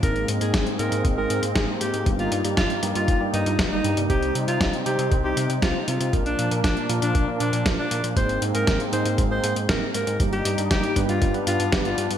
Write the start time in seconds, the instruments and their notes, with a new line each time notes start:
0.03 analog synth bass G#1, tine electric piano G#2 A#3 C4 D#4 G#4, analog synth pad G#3 A#3 C4, alto saxophone A#4, kick, closed hi-hat
0.16 closed hi-hat
0.28 analog synth bass G#2, closed hi-hat
0.41 analog synth bass G#2, tine electric piano G#2 A#3 C4 D#4 G#4, alto saxophone G#4, closed hi-hat
0.54 analog synth bass G#1, kick, snare, closed hi-hat
0.67 closed hi-hat
0.79 analog synth bass G#2, tine electric piano G#2 A#3 C4 D#4 G#4, alto saxophone A#4, closed hi-hat
0.92 analog synth bass G#2, closed hi-hat
1.05 analog synth bass G#1, kick, closed hi-hat
1.17 tine electric piano G#2 A#3 C4 D#4 G#4, alto saxophone A#4
1.30 analog synth bass G#2, closed hi-hat
1.43 analog synth bass G#2, closed hi-hat
1.55 analog synth bass G#1, tine electric piano G#2 A#3 C4 D#4 G#4, alto saxophone G#4, kick, snare, closed hi-hat
1.81 analog synth bass G#2, alto saxophone G4, closed hi-hat
1.94 analog synth bass G#2, closed hi-hat
2.06 analog synth bass G1, tine electric piano G2 G3 A#3 D#4 G4, analog synth pad G3 D#4, kick, closed hi-hat
2.19 alto saxophone F4, closed hi-hat
2.32 analog synth bass G2, closed hi-hat
2.44 analog synth bass G2, tine electric piano G2 G3 A#3 D#4 G4, closed hi-hat
2.57 analog synth bass G1, alto saxophone F4, kick, snare, closed hi-hat
2.70 closed hi-hat
2.83 analog synth bass G2, tine electric piano G2 G3 A#3 D#4 G4, closed hi-hat
2.95 analog synth bass G2, alto saxophone F4, closed hi-hat
3.08 analog synth bass G1, kick, closed hi-hat
3.21 tine electric piano G2 G3 A#3 D#4 G4
3.33 analog synth bass G2, alto saxophone D#4, closed hi-hat
3.46 analog synth bass G2, tine electric piano G2 G3 A#3 D#4 F4, closed hi-hat
3.59 analog synth bass G1, kick, snare, closed hi-hat
3.72 tine electric piano G2 G3 A#3 D#4 G4, alto saxophone D#4
3.84 analog synth bass G2, closed hi-hat
3.97 analog synth bass G2, tine electric piano C3 G3 A#3 D#4 G4, closed hi-hat
4.10 analog synth bass C2, tine electric piano C3 C4 D#4 G4 C5, analog synth pad C4, alto saxophone G4, kick, closed hi-hat
4.23 closed hi-hat
4.35 analog synth bass C3, closed hi-hat
4.48 analog synth bass C3, tine electric piano C3 C4 D#4 G4 C5, alto saxophone F4, closed hi-hat
4.61 analog synth bass C2, kick, snare, closed hi-hat
4.73 closed hi-hat
4.86 analog synth bass C3, tine electric piano C3 C4 D#4 G4 C5, alto saxophone G4, closed hi-hat
4.99 analog synth bass C3, closed hi-hat
5.11 analog synth bass C2, kick, closed hi-hat
5.24 tine electric piano C3 C4 D#4 G4 C5, alto saxophone G4
5.37 analog synth bass C3, closed hi-hat
5.50 analog synth bass C3, closed hi-hat
5.62 analog synth bass C2, tine electric piano C3 C4 D#4 G4 C5, alto saxophone F4, kick, snare, closed hi-hat
5.88 analog synth bass C3, alto saxophone F4, closed hi-hat
6.00 analog synth bass C3, closed hi-hat
6.13 analog synth bass A#1, tine electric piano A#2 A#3 D4 F4 A#4, analog synth pad F3 A#3 D4, kick, closed hi-hat
6.26 alto saxophone D4, closed hi-hat
6.39 analog synth bass A#2, closed hi-hat
6.51 tine electric piano A#2 A#3 D4 F4 A#4, analog synth bass A#2, closed hi-hat
6.64 analog synth bass A#1, alto saxophone D4, kick, snare, closed hi-hat
6.77 closed hi-hat
6.89 analog synth bass A#2, tine electric piano A#2 A#3 D4 F4 A#4, closed hi-hat
7.02 analog synth bass A#2, alto saxophone D4, closed hi-hat
7.15 analog synth bass A#1, kick, closed hi-hat
7.28 tine electric piano A#2 A#3 D4 F4 A#4
7.40 analog synth bass A#2, alto saxophone D4, closed hi-hat
7.53 analog synth bass A#2, closed hi-hat
7.66 analog synth bass A#1, tine electric piano A#2 A#3 D4 F4 A#4, kick, snare, closed hi-hat
7.78 alto saxophone D4
7.91 analog synth bass A#2, closed hi-hat
8.04 analog synth bass A#2, closed hi-hat
8.16 analog synth bass G#1, tine electric piano G#2 A#3 C4 D#4 G#4, analog synth pad G#3 C4, alto saxophone C5, kick, closed hi-hat
8.29 closed hi-hat
8.42 analog synth bass G#2, closed hi-hat
8.55 analog synth bass G#2, tine electric piano G#2 A#3 C4 D#4 G#4, alto saxophone A#4, closed hi-hat
8.67 analog synth bass G#1, kick, snare, closed hi-hat
8.80 closed hi-hat
8.93 analog synth bass G#2, tine electric piano G#2 A#3 C4 D#4 G#4, alto saxophone C5, closed hi-hat
9.05 analog synth bass G#2, closed hi-hat
9.18 analog synth bass G#1, kick, closed hi-hat
9.31 tine electric piano G#2 A#3 C4 D#4 G#4, alto saxophone C5
9.44 analog synth bass G#2, closed hi-hat
9.56 analog synth bass G#2, closed hi-hat
9.69 analog synth bass G#1, tine electric piano G#2 A#3 C4 D#4 G#4, alto saxophone A#4, kick, snare, closed hi-hat
9.94 analog synth bass G#2, alto saxophone A#4, closed hi-hat
10.07 analog synth bass G#2, closed hi-hat
10.20 analog synth bass G1, tine electric piano G2 G3 A#3 D#4 G4, analog synth pad G3 D#4, kick, closed hi-hat
10.33 alto saxophone G4, closed hi-hat
10.45 analog synth bass G2, closed hi-hat
10.58 analog synth bass G2, tine electric piano G2 G3 A#3 D#4 G4, closed hi-hat
10.71 analog synth bass G1, alto saxophone G4, kick, snare, closed hi-hat
10.84 closed hi-hat
10.96 analog synth bass G2, tine electric piano G2 B3 D4 G4 B4, kick, closed hi-hat
11.09 analog synth bass G2, alto saxophone F4, closed hi-hat
11.22 analog synth bass G1, analog synth pad B3 D4, kick, closed hi-hat
11.34 tine electric piano G2 B3 D4 G4 B4, closed hi-hat
11.47 analog synth bass G2, alto saxophone F4, closed hi-hat
11.60 analog synth bass G2, closed hi-hat
11.72 analog synth bass G1, tine electric piano G2 B3 D4 G4 B4, kick, snare, closed hi-hat
11.85 alto saxophone F4, closed hi-hat
11.98 analog synth bass G2, closed hi-hat
12.10 analog synth bass G2, closed hi-hat